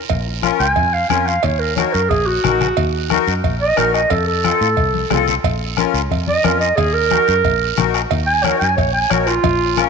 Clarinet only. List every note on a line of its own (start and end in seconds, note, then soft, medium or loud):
0.60 0.95 G#5 loud
0.93 1.08 F5 medium
1.09 1.28 G#5 medium
1.27 1.45 F5 medium
1.44 1.61 C#5 medium
1.60 1.76 A#4 medium
1.76 1.94 C#5 medium
1.93 2.11 A#4 medium
2.09 2.28 G#4 loud
2.27 3.24 F#4 loud
3.61 3.79 D#5 loud
3.77 3.93 A#4 loud
3.94 4.12 D#5 medium
4.11 4.26 A4 medium
4.27 5.24 A4 loud
6.28 6.46 D#5 loud
6.45 6.60 A#4 medium
6.60 6.78 D#5 loud
6.76 6.95 G#4 loud
6.93 7.91 A#4 loud
8.27 8.44 G#5 loud
8.43 8.59 C#5 loud
8.59 8.76 G#5 medium
8.77 8.93 C#5 medium
8.93 9.12 G#5 medium
9.11 9.28 C#5 medium
9.27 9.89 F4 loud